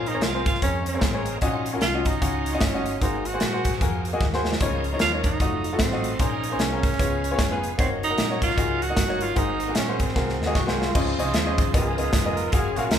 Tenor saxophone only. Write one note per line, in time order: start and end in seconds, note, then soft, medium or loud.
0.07 0.25 D#4 medium
0.23 0.47 F4 medium
0.47 0.61 F4 medium
0.63 0.85 C#4 medium
0.88 1.24 C4 medium
1.82 2.08 F4 medium
2.07 2.63 D#4 medium
2.62 3.03 C#4 medium
3.01 3.28 D#4 medium
3.26 3.81 F#4 medium
5.01 5.12 F4 medium
5.26 5.77 D#4 medium
5.81 6.22 C4 medium
6.21 6.62 D#4 medium
6.60 7.64 C#4 medium
7.80 7.90 C4 medium
8.04 8.40 D#4 medium
8.43 8.84 F4 medium
8.83 9.24 F#4 loud
9.23 9.39 F4 medium
9.38 9.77 D#4 loud
9.77 10.04 C#4 medium
10.02 10.57 C4 medium